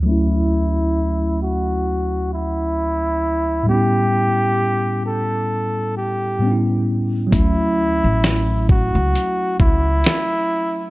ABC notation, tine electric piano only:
X:1
M:4/4
L:1/8
Q:"Swing 16ths" 1/4=66
K:D
V:1 name="Tine electric piano"
[D,,F,A,CE]8 | [A,,G,B,CE]6 [A,,G,B,CDE]2 | [F,A,CE]8 |]